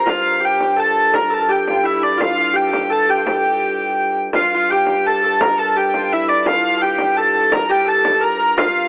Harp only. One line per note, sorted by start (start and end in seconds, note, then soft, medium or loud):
0.00 0.39 G4 medium
0.00 0.82 A#4 medium
0.00 1.81 C5 medium
0.06 1.89 F4 medium
0.40 1.48 G4 medium
0.76 1.20 A4 medium
1.14 1.36 A#4 medium
1.30 1.41 A4 medium
1.41 2.66 A4 medium
1.48 2.53 G4 medium
1.83 2.23 E4 medium
2.01 4.81 D4 medium
2.17 2.37 F4 medium
2.37 4.34 F4 medium
2.53 2.71 G4 medium
2.66 2.89 A4 medium
2.71 3.08 G4 medium
2.90 5.07 A4 medium
3.08 4.72 G4 medium
4.34 4.54 F4 medium
4.55 6.19 F4 medium
4.72 5.76 G4 medium
5.08 5.24 A4 medium
5.24 5.49 A4 medium
5.43 5.65 A#4 medium
5.59 7.17 A4 medium
5.76 6.83 G4 medium
6.13 6.51 E4 medium
6.30 8.88 D4 medium
6.46 8.58 F4 medium
6.83 7.69 G4 medium
7.18 7.58 A4 medium
7.52 7.92 A#4 medium
7.69 8.88 G4 medium
7.86 8.26 A4 medium
8.20 8.39 A#4 medium
8.39 8.88 A#4 medium
8.58 8.88 F4 medium